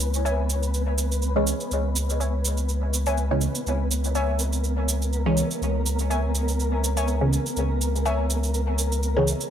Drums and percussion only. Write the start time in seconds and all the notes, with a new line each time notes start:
0.00 cabasa
0.14 cabasa
0.26 cabasa
0.50 cabasa
0.63 cabasa
0.74 cabasa
0.98 cabasa
1.12 cabasa
1.22 cabasa
1.47 cabasa
1.60 cabasa
1.71 cabasa
1.96 cabasa
2.10 cabasa
2.21 cabasa
2.45 cabasa
2.57 cabasa
2.69 cabasa
2.93 cabasa
3.06 cabasa
3.17 cabasa
3.41 cabasa
3.55 cabasa
3.67 cabasa
3.91 cabasa
4.04 cabasa
4.15 cabasa
4.39 cabasa
4.53 cabasa
4.64 cabasa
4.88 cabasa
5.02 cabasa
5.13 cabasa
5.37 cabasa
5.51 cabasa
5.62 cabasa
5.86 cabasa
5.99 cabasa
6.11 cabasa
6.35 cabasa
6.48 cabasa
6.60 cabasa
6.84 cabasa
6.97 cabasa
7.08 cabasa
7.33 cabasa
7.46 cabasa
7.57 cabasa
7.81 cabasa
7.96 cabasa
8.06 cabasa
8.30 cabasa
8.43 cabasa
8.54 cabasa
8.78 cabasa
8.92 cabasa
9.03 cabasa
9.27 cabasa
9.41 cabasa